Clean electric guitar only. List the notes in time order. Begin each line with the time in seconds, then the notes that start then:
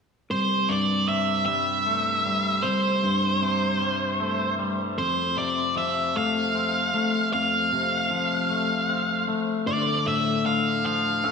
0.31 C2
0.69 G2
1.09 C3
1.48 G3
1.86 A3
2.26 G3
2.64 C2
3.03 G2
3.42 C3
3.81 G3
4.20 A3
4.59 G3
4.98 F2
5.37 C3
5.76 F3
6.15 A3
6.55 C4
6.94 A3
7.33 F2
7.72 C3
8.11 F3
8.50 A3
8.89 C4
9.28 A3
9.67 D2
10.06 A2
10.45 D3
10.84 F3
11.23 A3